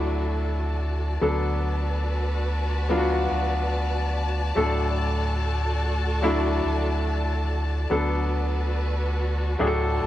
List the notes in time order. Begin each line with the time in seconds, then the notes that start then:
Already playing: D2 F#3 A3 D4 E4 F#4 A4 D5 A5
1.21 D2 D3 F#3 B3 D4 F#4 A4 B4
2.89 F#3 B3 D4 F4
2.97 F#4
3.31 D2
4.55 D2 A2 F#3 A3 D4 F#4 A4
6.22 F#3 A3 D4 E4
6.65 D2
7.90 D2 D3 F#3 B3 D4 F#4 A4 B4
9.59 D2 A2 F#3 A3 D4 G#4 A4 A5
9.67 A4
10.03 D2